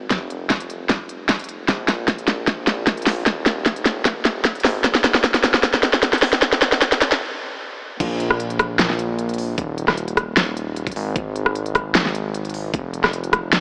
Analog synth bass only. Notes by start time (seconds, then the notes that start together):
1.68 A#1
4.64 G#1
6.42 F1
8.00 A#1
9.58 D#1
10.96 G#1
12.74 F1